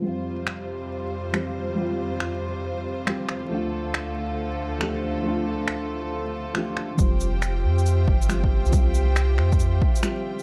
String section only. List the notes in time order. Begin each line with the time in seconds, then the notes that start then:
0.03 F2 C3 G3 F4 C5
3.51 D2 D3 A3 A4
6.99 F4 G4 C5 G5